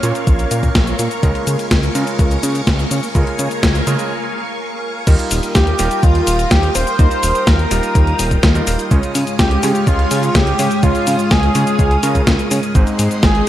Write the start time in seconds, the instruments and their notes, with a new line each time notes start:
Already playing: string machine A#4 C#5 F5 C#6
0.03 electric grand piano A#2 A#3 C#4 F4 C#5, analog synth bass A#2, closed hi-hat, cabasa
0.15 closed hi-hat, cabasa
0.27 analog synth bass A#1, kick, closed hi-hat, cabasa
0.39 closed hi-hat, cabasa
0.51 analog synth bass A#2, closed hi-hat, cabasa
0.63 kick, closed hi-hat, cabasa
0.75 analog synth bass A#1, kick, snare, closed hi-hat, cabasa
0.87 closed hi-hat, cabasa
0.99 analog synth bass A#2, closed hi-hat, cabasa
1.11 closed hi-hat, cabasa
1.23 analog synth bass C#2, electric grand piano C#3 G#3 C#4 F4 A#4, string machine G#5, kick, closed hi-hat, cabasa
1.35 closed hi-hat
1.47 analog synth bass C#3, closed hi-hat, cabasa
1.59 closed hi-hat, cabasa
1.71 analog synth bass C#2, kick, snare, closed hi-hat, cabasa
1.83 closed hi-hat, cabasa
1.95 analog synth bass C#3, electric grand piano C#3 G#3 C#4 F4 A#4, closed hi-hat, cabasa
2.07 closed hi-hat, cabasa
2.19 analog synth bass C#2, kick, closed hi-hat, cabasa
2.31 closed hi-hat, cabasa
2.43 analog synth bass C#3, closed hi-hat, cabasa
2.55 closed hi-hat, cabasa
2.67 analog synth bass C#2, kick, snare, closed hi-hat, cabasa
2.79 closed hi-hat, cabasa
2.91 analog synth bass C#3, closed hi-hat, cabasa
3.03 closed hi-hat, cabasa
3.15 analog synth bass C#2, electric grand piano C#3 G#3 C#4 F4 A#4, kick, closed hi-hat, cabasa
3.27 closed hi-hat
3.39 analog synth bass C#3, closed hi-hat, cabasa
3.51 closed hi-hat, cabasa
3.63 analog synth bass C#2, kick, snare, closed hi-hat, cabasa
3.75 closed hi-hat, cabasa
3.87 analog synth bass C#3, electric grand piano C#3 G#3 C#4 F4 A#4, closed hi-hat, cabasa
3.99 closed hi-hat, cabasa
5.07 analog synth bass D#2, electric grand piano G3 D#4 F4 A#4, string machine A#4 F5 G5 D#6, kick, closed hi-hat, crash, cabasa
5.19 closed hi-hat, cabasa
5.31 analog synth bass D#1, open hi-hat, cabasa
5.43 closed hi-hat, cabasa
5.55 analog synth bass D#2, analog synth lead G4, kick, snare, closed hi-hat, cabasa
5.67 closed hi-hat
5.79 analog synth bass D#1, electric grand piano G3 D#4 F4 A#4, open hi-hat, cabasa
5.91 closed hi-hat, cabasa
6.03 analog synth bass D#2, analog synth lead F4, kick, closed hi-hat, cabasa
6.15 closed hi-hat
6.27 analog synth bass D#1, open hi-hat, cabasa
6.39 closed hi-hat, cabasa
6.51 analog synth bass D#2, analog synth lead G4, kick, snare, closed hi-hat, cabasa
6.63 closed hi-hat
6.75 analog synth bass D#1, analog synth lead C5, open hi-hat, cabasa
6.87 closed hi-hat, cabasa
6.99 analog synth bass D#2, electric grand piano G3 D#4 F4 A#4, string machine D#6, kick, closed hi-hat, cabasa
7.11 closed hi-hat, cabasa
7.23 analog synth bass D#1, open hi-hat, cabasa
7.35 closed hi-hat, cabasa
7.47 analog synth bass D#2, analog synth lead A#4, kick, snare, closed hi-hat, cabasa
7.59 closed hi-hat
7.71 analog synth bass D#1, electric grand piano G3 D#4 F4 A#4, open hi-hat, cabasa
7.83 closed hi-hat, cabasa
7.95 analog synth bass D#2, kick, closed hi-hat, cabasa
8.07 closed hi-hat
8.19 analog synth bass D#1, open hi-hat, cabasa
8.31 kick, closed hi-hat, cabasa
8.43 analog synth bass D#2, kick, snare, closed hi-hat, cabasa
8.55 electric grand piano G3 D#4 F4 A#4, closed hi-hat, cabasa
8.67 analog synth bass D#1, open hi-hat, cabasa
8.79 closed hi-hat, cabasa
8.91 analog synth bass C#2, electric grand piano C#3 G#3 C#4 F4 C#5, string machine G#3 C#5 F5, kick, closed hi-hat, cabasa
9.03 closed hi-hat, cabasa
9.15 analog synth bass C#3, open hi-hat, cabasa
9.27 closed hi-hat, cabasa
9.39 analog synth bass C#2, analog synth lead G4, kick, snare, closed hi-hat, cabasa
9.51 closed hi-hat
9.63 analog synth bass C#3, electric grand piano C#3 G#3 C#4 F4 C#5, open hi-hat, cabasa
9.75 closed hi-hat, cabasa
9.87 analog synth bass C#2, analog synth lead F4, kick, closed hi-hat, cabasa
9.99 closed hi-hat
10.11 analog synth bass C#3, open hi-hat, cabasa
10.23 closed hi-hat, cabasa
10.35 analog synth bass C#2, analog synth lead G4, kick, snare, closed hi-hat, cabasa
10.47 closed hi-hat
10.59 analog synth bass C#3, open hi-hat, cabasa
10.71 closed hi-hat, cabasa
10.83 analog synth bass C#2, electric grand piano C#3 G#3 C#4 F4 C#5, analog synth lead F4, kick, closed hi-hat, cabasa
10.95 closed hi-hat, cabasa
11.07 analog synth bass C#3, open hi-hat, cabasa
11.19 closed hi-hat, cabasa
11.31 analog synth bass C#2, analog synth lead G#4, kick, snare, closed hi-hat, cabasa
11.43 closed hi-hat
11.55 analog synth bass C#3, electric grand piano C#3 G#3 C#4 F4 C#5, open hi-hat, cabasa
11.67 closed hi-hat, cabasa
11.79 analog synth bass C#2, kick, closed hi-hat, cabasa
11.91 closed hi-hat
12.03 analog synth bass C#3, electric grand piano C#3 G#3 C#4 F4 A#4, open hi-hat, cabasa
12.15 kick, closed hi-hat, cabasa
12.27 analog synth bass C#2, kick, snare, closed hi-hat, cabasa
12.39 closed hi-hat, cabasa
12.51 analog synth bass C#3, open hi-hat, cabasa
12.63 closed hi-hat, cabasa
12.75 analog synth bass G#1, electric grand piano G#2 G#3 C4 D#4 C5, string machine G#3 C5 D#5 C6, kick, closed hi-hat, cabasa
12.87 closed hi-hat, cabasa
12.99 analog synth bass G#2, open hi-hat, cabasa
13.11 closed hi-hat, cabasa
13.23 analog synth bass G#1, analog synth lead G#4, kick, snare, closed hi-hat, cabasa
13.35 closed hi-hat